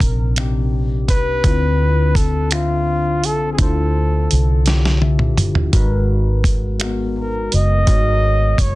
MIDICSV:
0, 0, Header, 1, 5, 480
1, 0, Start_track
1, 0, Tempo, 714286
1, 968, Time_signature, 6, 3, 24, 8
1, 5881, End_track
2, 0, Start_track
2, 0, Title_t, "Flugelhorn"
2, 0, Program_c, 0, 56
2, 0, Note_on_c, 0, 70, 86
2, 225, Note_off_c, 0, 70, 0
2, 734, Note_on_c, 0, 71, 111
2, 1453, Note_on_c, 0, 69, 86
2, 1463, Note_off_c, 0, 71, 0
2, 1696, Note_on_c, 0, 65, 84
2, 1706, Note_off_c, 0, 69, 0
2, 2186, Note_on_c, 0, 69, 81
2, 2196, Note_off_c, 0, 65, 0
2, 2365, Note_off_c, 0, 69, 0
2, 2369, Note_on_c, 0, 68, 51
2, 2419, Note_on_c, 0, 69, 79
2, 2429, Note_off_c, 0, 68, 0
2, 3134, Note_off_c, 0, 69, 0
2, 4830, Note_on_c, 0, 70, 81
2, 5068, Note_on_c, 0, 75, 105
2, 5078, Note_off_c, 0, 70, 0
2, 5783, Note_on_c, 0, 73, 83
2, 5794, Note_off_c, 0, 75, 0
2, 5881, Note_off_c, 0, 73, 0
2, 5881, End_track
3, 0, Start_track
3, 0, Title_t, "Tine electric piano"
3, 0, Program_c, 1, 4
3, 0, Control_c, 1, 64, 127
3, 0, Note_on_c, 1, 48, 71
3, 0, Note_on_c, 1, 60, 65
3, 0, Note_on_c, 1, 62, 61
3, 0, Note_on_c, 1, 63, 62
3, 0, Note_on_c, 1, 70, 73
3, 0, Note_on_c, 1, 72, 60
3, 162, Note_off_c, 1, 48, 0
3, 166, Note_off_c, 1, 60, 0
3, 170, Note_off_c, 1, 62, 0
3, 173, Note_off_c, 1, 63, 0
3, 177, Note_off_c, 1, 70, 0
3, 245, Note_on_c, 1, 48, 67
3, 249, Note_on_c, 1, 60, 60
3, 256, Note_on_c, 1, 62, 63
3, 266, Note_on_c, 1, 63, 65
3, 271, Note_on_c, 1, 67, 78
3, 883, Note_off_c, 1, 48, 0
3, 885, Note_off_c, 1, 60, 0
3, 889, Note_off_c, 1, 62, 0
3, 894, Note_off_c, 1, 63, 0
3, 897, Note_off_c, 1, 67, 0
3, 966, Note_on_c, 1, 50, 72
3, 971, Note_on_c, 1, 62, 62
3, 978, Control_c, 1, 64, 0
3, 979, Note_on_c, 1, 64, 63
3, 980, Note_off_c, 1, 72, 0
3, 984, Note_on_c, 1, 65, 62
3, 995, Note_on_c, 1, 60, 76
3, 1112, Control_c, 1, 64, 127
3, 1604, Note_off_c, 1, 50, 0
3, 1606, Note_off_c, 1, 62, 0
3, 1611, Note_off_c, 1, 64, 0
3, 1613, Note_off_c, 1, 65, 0
3, 1618, Note_off_c, 1, 60, 0
3, 1684, Note_on_c, 1, 50, 56
3, 1691, Note_on_c, 1, 62, 52
3, 1700, Note_on_c, 1, 76, 50
3, 1705, Note_on_c, 1, 65, 53
3, 1713, Note_on_c, 1, 72, 61
3, 2323, Note_off_c, 1, 50, 0
3, 2326, Note_off_c, 1, 62, 0
3, 2331, Note_off_c, 1, 76, 0
3, 2334, Note_off_c, 1, 65, 0
3, 2337, Note_off_c, 1, 72, 0
3, 2404, Note_on_c, 1, 50, 69
3, 2410, Note_on_c, 1, 62, 62
3, 2417, Note_on_c, 1, 64, 64
3, 2423, Note_on_c, 1, 65, 62
3, 2433, Note_on_c, 1, 72, 77
3, 3043, Note_off_c, 1, 50, 0
3, 3046, Note_off_c, 1, 62, 0
3, 3049, Note_off_c, 1, 64, 0
3, 3053, Note_off_c, 1, 65, 0
3, 3057, Note_off_c, 1, 72, 0
3, 3127, Note_on_c, 1, 50, 69
3, 3134, Note_on_c, 1, 62, 56
3, 3140, Note_on_c, 1, 64, 59
3, 3149, Note_on_c, 1, 65, 59
3, 3154, Note_on_c, 1, 67, 75
3, 3381, Note_on_c, 1, 76, 53
3, 3764, Note_off_c, 1, 50, 0
3, 3768, Note_off_c, 1, 62, 0
3, 3771, Note_off_c, 1, 64, 0
3, 3775, Note_off_c, 1, 65, 0
3, 3778, Note_off_c, 1, 67, 0
3, 3828, Note_off_c, 1, 76, 0
3, 3846, Note_on_c, 1, 56, 82
3, 3851, Note_on_c, 1, 63, 70
3, 3857, Note_on_c, 1, 66, 72
3, 3858, Control_c, 1, 64, 0
3, 3867, Note_on_c, 1, 70, 73
3, 3873, Note_on_c, 1, 71, 86
3, 3980, Control_c, 1, 64, 127
3, 4484, Note_off_c, 1, 56, 0
3, 4486, Note_off_c, 1, 63, 0
3, 4490, Note_off_c, 1, 66, 0
3, 4494, Note_off_c, 1, 70, 0
3, 4497, Note_off_c, 1, 71, 0
3, 4565, Note_on_c, 1, 56, 66
3, 4572, Note_on_c, 1, 63, 64
3, 4579, Note_on_c, 1, 66, 63
3, 4585, Note_on_c, 1, 70, 60
3, 4595, Note_on_c, 1, 59, 76
3, 5203, Note_off_c, 1, 56, 0
3, 5207, Note_off_c, 1, 63, 0
3, 5210, Note_off_c, 1, 66, 0
3, 5213, Note_off_c, 1, 70, 0
3, 5218, Note_off_c, 1, 59, 0
3, 5284, Note_on_c, 1, 56, 65
3, 5293, Note_on_c, 1, 63, 65
3, 5299, Note_on_c, 1, 66, 65
3, 5307, Note_on_c, 1, 70, 64
3, 5314, Note_on_c, 1, 73, 79
3, 5881, Note_off_c, 1, 56, 0
3, 5881, Note_off_c, 1, 63, 0
3, 5881, Note_off_c, 1, 66, 0
3, 5881, Note_off_c, 1, 70, 0
3, 5881, Note_off_c, 1, 73, 0
3, 5881, End_track
4, 0, Start_track
4, 0, Title_t, "Fingered electric bass"
4, 0, Program_c, 2, 33
4, 7, Note_on_c, 2, 34, 67
4, 735, Note_off_c, 2, 34, 0
4, 735, Note_on_c, 2, 36, 77
4, 948, Note_off_c, 2, 36, 0
4, 972, Note_on_c, 2, 38, 91
4, 2178, Note_off_c, 2, 38, 0
4, 2178, Note_on_c, 2, 36, 75
4, 2390, Note_off_c, 2, 36, 0
4, 2415, Note_on_c, 2, 38, 89
4, 2865, Note_off_c, 2, 38, 0
4, 2905, Note_on_c, 2, 36, 69
4, 3622, Note_off_c, 2, 36, 0
4, 3622, Note_on_c, 2, 29, 77
4, 3832, Note_off_c, 2, 29, 0
4, 3857, Note_on_c, 2, 32, 91
4, 5026, Note_off_c, 2, 32, 0
4, 5064, Note_on_c, 2, 30, 82
4, 5273, Note_off_c, 2, 30, 0
4, 5297, Note_on_c, 2, 32, 96
4, 5746, Note_off_c, 2, 32, 0
4, 5773, Note_on_c, 2, 30, 72
4, 5881, Note_off_c, 2, 30, 0
4, 5881, End_track
5, 0, Start_track
5, 0, Title_t, "Drums"
5, 2, Note_on_c, 9, 36, 81
5, 9, Note_on_c, 9, 42, 65
5, 70, Note_off_c, 9, 36, 0
5, 76, Note_off_c, 9, 42, 0
5, 244, Note_on_c, 9, 42, 56
5, 254, Note_on_c, 9, 26, 95
5, 311, Note_off_c, 9, 42, 0
5, 321, Note_off_c, 9, 26, 0
5, 729, Note_on_c, 9, 36, 91
5, 730, Note_on_c, 9, 42, 62
5, 796, Note_off_c, 9, 36, 0
5, 797, Note_off_c, 9, 42, 0
5, 967, Note_on_c, 9, 36, 91
5, 969, Note_on_c, 9, 42, 58
5, 1034, Note_off_c, 9, 36, 0
5, 1036, Note_off_c, 9, 42, 0
5, 1445, Note_on_c, 9, 36, 80
5, 1455, Note_on_c, 9, 42, 65
5, 1513, Note_off_c, 9, 36, 0
5, 1522, Note_off_c, 9, 42, 0
5, 1685, Note_on_c, 9, 42, 60
5, 1695, Note_on_c, 9, 26, 91
5, 1752, Note_off_c, 9, 42, 0
5, 1762, Note_off_c, 9, 26, 0
5, 2174, Note_on_c, 9, 42, 59
5, 2242, Note_off_c, 9, 42, 0
5, 2409, Note_on_c, 9, 42, 60
5, 2410, Note_on_c, 9, 36, 92
5, 2476, Note_off_c, 9, 42, 0
5, 2477, Note_off_c, 9, 36, 0
5, 2894, Note_on_c, 9, 42, 65
5, 2962, Note_off_c, 9, 42, 0
5, 3130, Note_on_c, 9, 42, 59
5, 3141, Note_on_c, 9, 38, 46
5, 3197, Note_off_c, 9, 42, 0
5, 3208, Note_off_c, 9, 38, 0
5, 3262, Note_on_c, 9, 38, 46
5, 3330, Note_off_c, 9, 38, 0
5, 3371, Note_on_c, 9, 48, 65
5, 3439, Note_off_c, 9, 48, 0
5, 3488, Note_on_c, 9, 47, 62
5, 3556, Note_off_c, 9, 47, 0
5, 3612, Note_on_c, 9, 45, 80
5, 3615, Note_on_c, 9, 42, 60
5, 3679, Note_off_c, 9, 45, 0
5, 3682, Note_off_c, 9, 42, 0
5, 3731, Note_on_c, 9, 43, 75
5, 3798, Note_off_c, 9, 43, 0
5, 3850, Note_on_c, 9, 42, 60
5, 3851, Note_on_c, 9, 36, 90
5, 3918, Note_off_c, 9, 36, 0
5, 3918, Note_off_c, 9, 42, 0
5, 4328, Note_on_c, 9, 36, 84
5, 4334, Note_on_c, 9, 42, 64
5, 4395, Note_off_c, 9, 36, 0
5, 4401, Note_off_c, 9, 42, 0
5, 4567, Note_on_c, 9, 42, 56
5, 4577, Note_on_c, 9, 26, 100
5, 4635, Note_off_c, 9, 42, 0
5, 4645, Note_off_c, 9, 26, 0
5, 5054, Note_on_c, 9, 42, 59
5, 5121, Note_off_c, 9, 42, 0
5, 5289, Note_on_c, 9, 42, 59
5, 5290, Note_on_c, 9, 36, 94
5, 5357, Note_off_c, 9, 36, 0
5, 5357, Note_off_c, 9, 42, 0
5, 5767, Note_on_c, 9, 36, 82
5, 5771, Note_on_c, 9, 42, 67
5, 5834, Note_off_c, 9, 36, 0
5, 5838, Note_off_c, 9, 42, 0
5, 5881, End_track
0, 0, End_of_file